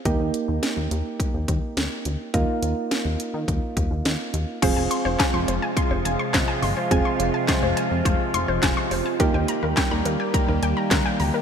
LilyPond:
<<
  \new Staff \with { instrumentName = "Synth arpeggio sound" } { \time 4/4 \key f \dorian \tempo 4 = 105 r1 | r1 | c''16 aes''16 c'''16 c''16 aes''16 c'''16 c''16 aes''16 c'''16 c''16 aes''16 c'''16 c''16 aes''16 c'''16 c''16 | aes''16 c'''16 c''16 aes''16 c'''16 c''16 aes''16 r16 c''16 r16 c'''16 c''16 aes''16 c'''16 c''16 aes''16 |
bes'16 g''16 bes''16 bes'16 g''16 bes''16 bes'16 g''16 bes''16 bes'16 g''16 bes''16 bes'16 g''16 bes''16 bes'16 | }
  \new Staff \with { instrumentName = "Synth keys" } { \time 4/4 \key f \dorian <bes ees' g'>1 | <bes ees' f'>1 | <c' f' aes'>1 | <c' f' aes'>1 |
<bes ees' g'>1 | }
  \new Staff \with { instrumentName = "Analog synth pad" } { \clef bass \time 4/4 \key f \dorian r1 | r1 | <c f aes f'>1~ | <c f aes f'>1 |
<ees g bes g'>1 | }
  \new Staff \with { instrumentName = "Analog synth bass" } { \clef bass \time 4/4 \key f \dorian ees,16 ees,16 r16 ees,16 r16 ees,16 ees,16 r8 ees,16 ees,16 r16 d,16 r16 d,16 r16 | ees,16 r16 ees,16 r8 ees,16 r16 ees16 ees,16 r16 ees,16 ees,16 ees,16 r16 ees,16 r16 | f,,16 f,,16 r16 f,,16 r16 f,,16 f,,16 r8 f,,16 f,,16 r16 g,,16 r16 g,,16 r16 | f,,16 r16 f,,16 r8 f,,16 r16 f,16 f,,16 r16 f,,16 f,,16 f,,16 r16 f,,16 r16 |
ees,16 ees,16 r16 ees,16 r16 ees,16 ees,16 r8 ees,16 ees,16 r16 d,16 r16 d,16 r16 | }
  \new DrumStaff \with { instrumentName = "Drums" } \drummode { \time 4/4 <hh bd>8 hh8 <hh sn>8 hh8 <hh bd>8 <hh bd>8 <hh sn>8 hh8 | <hh bd>8 hh8 <hh sn>8 hh8 <hh bd>8 <hh bd>8 <hh sn>8 hh8 | <cymc hh bd>8 hh8 <hc hh bd sn>8 hh8 <hh bd>8 hh8 <hc hh bd sn>8 hho8 | <hh bd>8 hh8 <hc hh bd sn>8 hh8 <hh bd>8 hh8 <hc hh bd sn>8 hho8 |
<hh bd>8 hh8 <hc hh bd sn>8 hh8 <hh bd>8 hh8 <hc hh bd sn>8 hho8 | }
>>